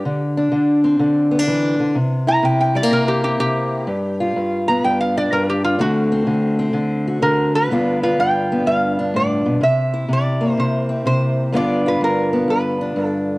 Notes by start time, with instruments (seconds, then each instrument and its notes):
0.05 steel-string acoustic guitar D3
0.37 steel-string acoustic guitar D4
0.52 steel-string acoustic guitar D3
0.84 steel-string acoustic guitar C4
0.99 steel-string acoustic guitar D3
1.31 steel-string acoustic guitar B3
1.39 steel-string acoustic guitar D4
1.47 steel-string acoustic guitar E3
1.80 steel-string acoustic guitar D3
1.95 steel-string acoustic guitar C3
2.27 steel-string acoustic guitar E4, resonator guitar played with a steel bar A#5
2.43 steel-string acoustic guitar C3, resonator guitar played with a steel bar G5
2.61 resonator guitar played with a steel bar G5
2.75 steel-string acoustic guitar G3, resonator guitar played with a steel bar D5
2.83 steel-string acoustic guitar A#3
2.91 steel-string acoustic guitar C3, resonator guitar played with a steel bar A#4
3.08 resonator guitar played with a steel bar G4
3.24 steel-string acoustic guitar C4, resonator guitar played with a steel bar G4
3.40 steel-string acoustic guitar C3, resonator guitar played with a steel bar G4
3.87 steel-string acoustic guitar G2
4.20 steel-string acoustic guitar F4
4.36 steel-string acoustic guitar G2
4.68 steel-string acoustic guitar B3, resonator guitar played with a steel bar A#5
4.84 steel-string acoustic guitar G2, resonator guitar played with a steel bar G5
5.01 resonator guitar played with a steel bar F5
5.17 steel-string acoustic guitar D4, resonator guitar played with a steel bar D5
5.32 steel-string acoustic guitar G2, resonator guitar played with a steel bar A#4
5.50 resonator guitar played with a steel bar G4
5.64 resonator guitar played with a steel bar F4
5.79 steel-string acoustic guitar D3 A3 C4, resonator guitar played with a steel bar F#4
6.12 steel-string acoustic guitar C4
6.27 steel-string acoustic guitar D3
6.59 steel-string acoustic guitar C4
6.73 steel-string acoustic guitar D3
7.07 steel-string acoustic guitar F#4
7.22 steel-string acoustic guitar D3, resonator guitar played with a steel bar A#4
7.55 resonator guitar played with a steel bar B4
7.70 steel-string acoustic guitar G2 D3 B3 D4 F4
8.03 steel-string acoustic guitar F4, resonator guitar played with a steel bar B4
8.19 steel-string acoustic guitar G2, resonator guitar played with a steel bar G5
8.52 steel-string acoustic guitar B3
8.66 steel-string acoustic guitar G2, resonator guitar played with a steel bar F5
8.99 steel-string acoustic guitar D4
9.14 steel-string acoustic guitar A2, resonator guitar played with a steel bar D5
9.46 steel-string acoustic guitar B2
9.61 steel-string acoustic guitar C3, resonator guitar played with a steel bar E5
9.94 steel-string acoustic guitar E4
10.09 steel-string acoustic guitar C3
10.13 resonator guitar played with a steel bar D5
10.41 steel-string acoustic guitar A#3
10.57 steel-string acoustic guitar C3, resonator guitar played with a steel bar C5
10.89 steel-string acoustic guitar C4
11.06 steel-string acoustic guitar C3, resonator guitar played with a steel bar C5
11.52 steel-string acoustic guitar G2 D3 B3 D4 F4, resonator guitar played with a steel bar D5
11.86 steel-string acoustic guitar F4, resonator guitar played with a steel bar B4
12.01 steel-string acoustic guitar G2, resonator guitar played with a steel bar A#4
12.33 steel-string acoustic guitar B3
12.48 steel-string acoustic guitar G2, resonator guitar played with a steel bar B4
12.81 steel-string acoustic guitar D4
12.96 steel-string acoustic guitar G2
13.05 resonator guitar played with a steel bar A4